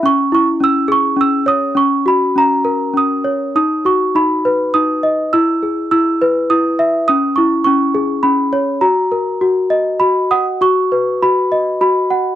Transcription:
\new Staff \with { instrumentName = "Celesta" } { \time 3/4 \key b \major \tempo 4 = 102 << { cis'''8 cis'''8 e'''8 cis'''8 e'''8 dis'''8 | cis'''8 b''8 ais''4 dis'''4 | dis'''8 cis'''8 b''4 dis'''4 | e'''4 e'''4 dis'''4 |
dis'''8 cis'''8 cis'''4 b''4 | ais''2 b''8 dis'''8 | cis'''4 b''4 b''4 | } \\ { cis'8 e'8 cis'8 gis'8 cis'8 cis''8 | cis'8 fis'8 cis'8 ais'8 cis'8 cis''8 | dis'8 fis'8 dis'8 b'8 dis'8 dis''8 | e'8 gis'8 e'8 b'8 e'8 e''8 |
cis'8 e'8 cis'8 gis'8 cis'8 cis''8 | fis'8 ais'8 fis'8 dis''8 fis'8 fis''8 | fis'8 b'8 fis'8 dis''8 fis'8 fis''8 | } >> }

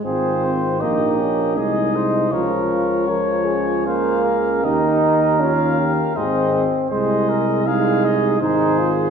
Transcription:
<<
  \new Staff \with { instrumentName = "Cornet" } { \time 3/4 \key aes \major \tempo 4 = 79 c''4 ees''4 ees''4 | des''2 f''4 | ees''4 f''4 ees''8 r8 | ees''4 f''8 ees''8 c''4 | }
  \new Staff \with { instrumentName = "Trumpet" } { \time 3/4 \key aes \major aes'8 c''8 g'4 aes'8 c''8 | bes'4 des''4 c''8 bes'8 | bes'2 c''8 r8 | c''8 bes'8 aes'4 aes'4 | }
  \new Staff \with { instrumentName = "French horn" } { \time 3/4 \key aes \major f'4 ees'8 des'8 ees'4 | f'8 f'8 bes'8 aes'4. | g'4 f'8 g'8 aes'8 r8 | aes'4 ees'4 ees'8 f'8 | }
  \new Staff \with { instrumentName = "Trombone" } { \time 3/4 \key aes \major c'4 bes4 aes4 | f4 f4 bes4 | ees'4 des'8 r8 c'4 | aes4 aes4 ees'8 r8 | }
  \new Staff \with { instrumentName = "Tuba" } { \clef bass \time 3/4 \key aes \major aes,,4 bes,,4 c,4 | des,2. | ees,2 aes,,8 r8 | c,2 aes,,4 | }
>>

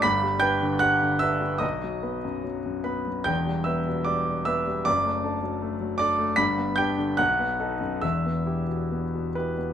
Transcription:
<<
  \new Staff \with { instrumentName = "Grand piano" } { \time 2/4 \key e \minor \tempo 4 = 75 <b'' b'''>8 <g'' g'''>8 <fis'' fis'''>8 <e'' e'''>8 | <dis'' dis'''>4 r8 <b' b''>8 | <g'' g'''>8 <e'' e'''>8 <d'' d'''>8 <e'' e'''>8 | <d'' d'''>4. <d'' d'''>8 |
<b'' b'''>8 <g'' g'''>8 <fis'' fis'''>4 | <e'' e'''>4. b'8 | }
  \new Staff \with { instrumentName = "Grand piano" } { \clef bass \time 2/4 \key e \minor <g,, g,>16 g16 <d' b'>16 d16 g16 d16 <d' b'>16 g16 | b,,16 fis16 <b b'>16 fis,16 fis16 fis,16 b16 fis16 | <e,, e,>16 g16 <b b'>16 b,16 g16 b,16 <b b'>16 g16 | <fis,, fis,>16 a16 <d' a'>16 fis16 a16 fis16 <d' a'>16 a16 |
<g,, g,>16 b16 <d' g'>16 d16 b,,16 b16 <dis' a'>16 fis,16 | <e,, e,>16 b16 <e' g'>16 b,16 b16 b,16 <e' g'>16 b16 | }
>>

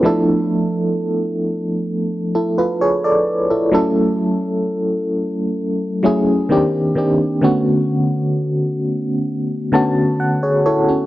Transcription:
\new Staff \with { instrumentName = "FM electric piano" } { \time 4/4 \key d \lydian \tempo 4 = 65 << { b16 r2 r16 <e' a'>16 <f' b'>16 <gis' cis''>16 <a' d''>8 <e' a'>16~ | <e' a'>16 r2. r8. | r2 r8 a''8 fis''16 <gis' cis''>16 <e' a' cis''>16 <cis' fis'>16 | } \\ { <f a d' e' a'>2 r2 | <fis a cis' e' a'>2 r8 <fis a cis' e' gis'>8 <ees bes c' d' g'>8 <ees bes c' d' g'>8 | <d a b cis' fis'>2 r8 <d a b cis' fis'>4 r8 | } >> }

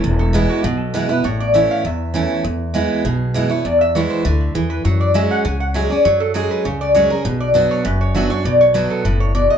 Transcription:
<<
  \new Staff \with { instrumentName = "Resonator guitar played with a steel bar" } { \time 4/4 \key e \mixolydian \tempo 4 = 200 r8 a'8 gis'8 fis'8 gis'8 a'8 b'8 b'8 | cis''8 d''8 e''8 f''8 e''4.~ e''16 r16 | r2 gis'4. cis''8 | d''8 e''8 cis''8 c''8 b'8 e'8 gis'8 b'8 |
cis''8 d''8 e''8 fis''8 gis''8 fis''8 e''8 d''8 | cis''8 a'8 gis'8 b'8 cis''8 d''8 cis''8 bes'8 | b'8 d''8 r8 cis''8 b'8 cis''8 e''8 cis''8 | d''8 cis''8 b'8 a'8 b'8 cis''8 d''8 dis''8 | }
  \new Staff \with { instrumentName = "Steel-string acoustic guitar" } { \time 4/4 \key e \mixolydian << { r4 <e gis b e'>4 r4 <e gis b e'>8 <b e'>8 | r4 <e a cis' e'>4 r4 <e a cis' e'>4 | r4 <e gis b e'>4 r4 <e gis b e'>8 <b e'>8 | r4 <e gis b e'>4 r2 |
r4 <fis gis cis' gis'>4 r4 <fis gis cis' gis'>8 <cis' gis'>8 | r4 <fis gis cis' gis'>4 r4 <fis gis cis' gis'>8 <cis' gis'>8 | r4 <fis b d' fis'>4 r4 <fis b d' fis'>8 <d' fis'>8 | r4 <fis b d' fis'>4 r2 | } \\ { e,2 b,2 | a,2 e,2 | e,2 b,2 | e,2 d4 e4 |
fis2 cis2 | fis2 cis2 | b,2 fis,2 | b,2 a,4 b,4 | } >> }
  \new Staff \with { instrumentName = "Upright bass" } { \clef bass \time 4/4 \key e \mixolydian e,,2 b,,2 | a,,2 e,2 | e,2 b,,2 | e,2 d,4 e,4 |
fis,2 cis,2 | fis,2 cis,2 | b,,2 fis,,2 | b,,2 fis,,2 | }
>>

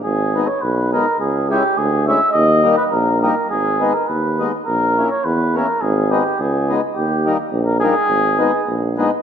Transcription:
<<
  \new Staff \with { instrumentName = "Muted trumpet" } { \time 2/4 \key gis \minor \tempo 4 = 104 gis'8. cis''16 b'8 ais'8 | gis'8 g'8 gis'8 e''8 | dis''8. b'16 ais'8 ais'8 | gis'8. ais'16 b'8. r16 |
ais'8. cis''16 b'8 ais'8 | gis'8 g'8 gis'8. r16 | g'8. r8 ais'16 gis'8~ | gis'4. r8 | }
  \new Staff \with { instrumentName = "Accordion" } { \time 2/4 \key gis \minor r8 <gis b dis'>8 r8 <gis b dis'>8 | r8 <gis cis' e'>8 r8 <gis cis' e'>8 | r8 <g ais dis'>8 r8 <g ais dis'>8 | r8 <gis b dis'>8 r8 <gis b dis'>8 |
r8 <ais cis' e'>8 r8 <ais cis' e'>8 | r8 <gis b dis'>8 r8 <gis b dis'>8 | r8 <g ais dis'>8 r8 <g ais dis'>8 | r8 <gis b dis'>8 r8 <gis b dis'>8 | }
  \new Staff \with { instrumentName = "Tuba" } { \clef bass \time 2/4 \key gis \minor gis,,4 b,,4 | cis,4 d,4 | dis,4 ais,,4 | gis,,4 dis,4 |
ais,,4 e,4 | gis,,4 cis,4 | dis,4 ais,,4 | gis,,4 ais,,4 | }
>>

